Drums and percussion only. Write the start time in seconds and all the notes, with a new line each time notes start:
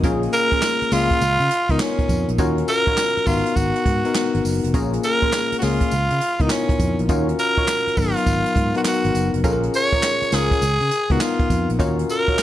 0.04 kick, closed hi-hat, tambourine
0.23 closed hi-hat
0.33 closed hi-hat, tambourine
0.52 kick, closed hi-hat
0.62 snare, clap, tambourine
0.82 closed hi-hat
0.92 snare, open hi-hat, tambourine
1.11 kick, closed hi-hat
1.21 closed hi-hat, tambourine
1.40 closed hi-hat
1.51 closed hi-hat
1.69 kick, closed hi-hat
1.80 snare, clap, tambourine
1.99 kick, closed hi-hat
2.09 kick, closed hi-hat, tambourine
2.28 closed hi-hat
2.38 kick, closed hi-hat, tambourine
2.58 closed hi-hat
2.68 closed hi-hat, tambourine
2.87 kick, closed hi-hat
2.97 snare, clap, tambourine
3.17 closed hi-hat
3.27 kick, open hi-hat, tambourine
3.46 closed hi-hat
3.56 kick, closed hi-hat, tambourine
3.75 closed hi-hat
3.86 kick, closed hi-hat
4.05 closed hi-hat
4.15 snare, clap, tambourine
4.34 closed hi-hat
4.45 open hi-hat, tambourine
4.64 closed hi-hat
4.74 kick, closed hi-hat, tambourine
4.93 closed hi-hat
5.03 closed hi-hat, tambourine
5.22 kick, closed hi-hat
5.33 snare, clap, tambourine
5.52 closed hi-hat
5.62 snare, open hi-hat, tambourine
5.81 kick, closed hi-hat
5.91 closed hi-hat, tambourine
6.10 closed hi-hat
6.21 closed hi-hat
6.40 kick, closed hi-hat
6.50 snare, clap, tambourine
6.69 kick, closed hi-hat
6.80 kick, closed hi-hat, tambourine
6.99 closed hi-hat
7.09 kick, closed hi-hat, tambourine
7.29 closed hi-hat
7.39 closed hi-hat, tambourine
7.58 kick, closed hi-hat
7.68 snare, clap, tambourine
7.87 closed hi-hat
7.97 kick, open hi-hat, tambourine
8.17 closed hi-hat
8.26 kick, closed hi-hat, tambourine
8.46 closed hi-hat
8.56 kick, closed hi-hat
8.75 closed hi-hat
8.85 snare, clap, tambourine
9.04 closed hi-hat
9.15 closed hi-hat, tambourine
9.34 closed hi-hat
9.44 kick, closed hi-hat, tambourine
9.63 closed hi-hat
9.74 closed hi-hat, tambourine
9.93 kick, closed hi-hat
10.03 snare, clap, tambourine
10.22 closed hi-hat
10.32 snare, open hi-hat, tambourine
10.51 kick, closed hi-hat
10.62 closed hi-hat, tambourine
10.81 closed hi-hat
10.91 closed hi-hat
11.10 kick, closed hi-hat
11.20 snare, clap, tambourine
11.39 kick, closed hi-hat
11.50 kick, closed hi-hat, tambourine
11.69 closed hi-hat
11.80 kick, closed hi-hat, tambourine
11.99 closed hi-hat
12.09 closed hi-hat, tambourine
12.28 kick, closed hi-hat
12.38 snare, clap, tambourine